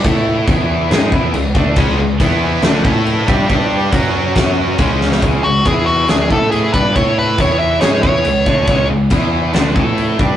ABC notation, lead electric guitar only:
X:1
M:4/4
L:1/8
Q:1/4=139
K:C#m
V:1 name="Lead electric guitar"
z8 | z8 | z8 | z F G F G A G B |
c B c e c c3- | c z6 z |]